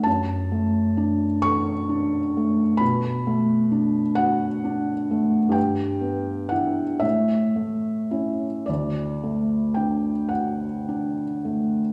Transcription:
0.03 2.77 F#2 medium
0.03 1.42 A5 medium
0.52 1.25 A3 soft
0.97 1.71 D4 soft
1.42 2.18 A4 soft
1.42 2.80 C#6 loud
1.89 2.62 D4 soft
2.37 2.82 A3 soft
2.77 5.52 B2 medium
2.77 4.17 B5 medium
3.27 4.00 A3 soft
3.72 4.46 D4 soft
4.15 4.92 F#4 medium
4.15 5.54 F#5 medium
4.64 5.37 D4 soft
5.11 5.56 A3 soft
5.49 6.96 G2 medium
5.49 6.51 G5 medium
6.01 6.82 B3 soft
6.49 6.99 D4 soft
6.49 6.99 E4 soft
6.49 7.01 F#5 medium
7.00 8.63 A2 soft
7.00 8.66 E5 medium
7.56 8.45 A3 soft
8.11 8.64 C#4 soft
8.11 8.64 E4 soft
8.66 11.93 D2 soft
8.66 10.30 D5 medium
9.24 10.10 A3 soft
9.74 10.65 D4 soft
9.74 10.30 G5 medium
10.29 11.23 F#4 soft
10.29 11.93 F#5 medium
10.89 11.80 D4 soft
11.45 11.93 A3 soft

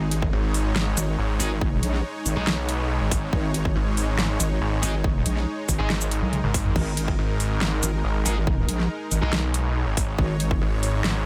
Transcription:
0.00 0.31 G#1 loud
0.00 11.26 G#3 medium
0.00 11.26 D#4 medium
0.00 5.88 C#5 medium
0.11 closed hi-hat medium
0.22 kick loud
0.33 0.95 G#1 medium
0.54 open hi-hat medium
0.76 snare loud
0.97 1.17 G#1 medium
0.97 closed hi-hat medium
0.97 shaker medium
1.19 1.38 G#1 loud
1.40 1.81 G#1 loud
1.40 1.50 G#3 medium
1.40 1.50 D#4 medium
1.40 1.50 G#4 loud
1.40 open hi-hat medium
1.40 shaker medium
1.61 kick loud
1.83 2.03 A#1 loud
1.83 closed hi-hat medium
1.94 snare soft
2.26 2.35 G#1 loud
2.26 open hi-hat medium
2.26 shaker medium
2.36 2.99 B1 medium
2.36 2.46 G#3 medium
2.36 2.46 D#4 medium
2.36 2.46 G#4 medium
2.47 snare loud
2.69 closed hi-hat medium
3.01 3.31 G#1 loud
3.11 kick loud
3.11 open hi-hat medium
3.33 3.74 G#1 loud
3.33 kick loud
3.54 closed hi-hat medium
3.65 kick loud
3.76 4.38 G#1 medium
3.97 open hi-hat medium
4.19 snare loud
4.40 4.60 G#1 medium
4.40 closed hi-hat medium
4.40 shaker medium
4.61 4.81 G#1 loud
4.83 5.24 G#1 loud
4.83 4.93 G#3 medium
4.83 4.93 D#4 medium
4.83 4.93 G#4 medium
4.83 open hi-hat medium
4.83 shaker medium
5.04 kick loud
5.26 5.45 A#1 loud
5.26 closed hi-hat medium
5.37 snare soft
5.69 5.78 G#1 loud
5.69 kick medium
5.69 open hi-hat medium
5.69 shaker medium
5.79 6.21 G#1 medium
5.79 5.89 G#3 medium
5.79 5.89 D#4 medium
5.79 5.89 G#4 loud
5.90 9.32 A#4 medium
5.90 snare loud
6.01 shaker medium
6.11 closed hi-hat medium
6.22 6.42 B1 loud
6.33 closed hi-hat soft
6.33 high tom medium
6.44 6.74 G#1 loud
6.44 high tom medium
6.54 kick loud
6.54 open hi-hat loud
6.65 mid tom medium
6.76 7.17 G#1 loud
6.76 kick loud
6.76 crash medium
6.97 closed hi-hat medium
7.08 kick loud
7.19 7.81 G#1 medium
7.40 open hi-hat medium
7.61 snare loud
7.83 8.03 G#1 loud
7.83 closed hi-hat medium
7.83 shaker medium
8.04 8.24 G#1 loud
8.25 8.67 G#1 loud
8.25 8.36 G#3 medium
8.25 8.36 D#4 medium
8.25 8.36 G#4 loud
8.25 open hi-hat loud
8.25 shaker medium
8.47 kick loud
8.69 8.88 A#1 loud
8.69 closed hi-hat medium
8.80 snare soft
9.11 9.21 G#1 loud
9.11 open hi-hat medium
9.11 shaker medium
9.22 9.85 B1 loud
9.22 9.32 G#3 medium
9.22 9.32 D#4 medium
9.22 9.32 G#4 medium
9.33 11.26 C#5 medium
9.33 snare loud
9.54 closed hi-hat medium
9.87 10.17 G#1 loud
9.97 kick loud
9.97 open hi-hat loud
10.19 10.60 G#1 loud
10.19 kick loud
10.40 closed hi-hat medium
10.51 kick loud
10.61 11.24 G#1 medium
10.83 open hi-hat medium
11.04 snare loud

